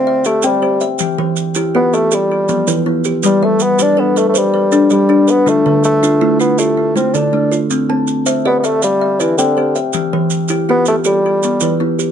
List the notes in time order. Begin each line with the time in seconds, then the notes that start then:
Already playing: C4 E5 F5
0.07 E5
0.24 A3 G4, maracas
0.42 G3 C4 C5 G5, maracas
0.62 G4 C5
0.81 E5, maracas
0.99 E3 G4, maracas
1.18 E3 C5
1.36 maracas
1.55 E4 G4, maracas
1.75 B3 F4 G4
1.93 A3 G4, maracas
2.11 G3 G4 A4, maracas
2.31 G4
2.49 F3 B3, maracas
2.67 E3 E4 B4, maracas
2.86 B3 E4
3.04 G4, maracas
3.23 G3 B4, maracas
3.42 G3 A3 E5
3.60 B3, maracas
3.79 D4 G4 B4, maracas
3.97 B3 D4 A4 B4
4.16 A3 B4, maracas
4.29 A3
4.34 G3 B4 C5, maracas
4.54 B4
4.72 D4 A4, maracas
4.90 G3 G4 D5, maracas
5.09 D4 G4
5.28 B3 B4, maracas
5.46 D3 A3 F4, maracas
5.66 D3 B4
5.84 A3, maracas
6.03 D4 F4, maracas
6.21 A3 E4 F4
6.40 B3 F4, maracas
6.58 A3 F4 G4, maracas
6.77 F4
6.96 A3 C4 E4, maracas
7.14 D3 D4 A4, maracas
7.33 A3 D4
7.52 F4, maracas
7.70 C4, maracas
7.89 C4 A5
8.07 maracas
8.26 C5 E5, maracas
8.45 B3 G4 D5 E5
8.59 B3
8.64 A3 E5, maracas
8.82 G3 E5 F5, maracas
9.01 E5
9.20 E3 G4 D5, maracas
9.37 D3 C4 C5 G5, maracas
9.57 G4 C5
9.76 E5, maracas
9.93 E3 G4, maracas
10.13 E3 C5
10.30 maracas
10.48 E4 G4, maracas
10.69 B3 F4 G4
10.85 A3 G4, maracas
11.04 G3 G4 A4, maracas
11.26 G4
11.43 B3, maracas
11.60 E3 E4 B4, maracas
11.80 B3 E4
11.99 G4, maracas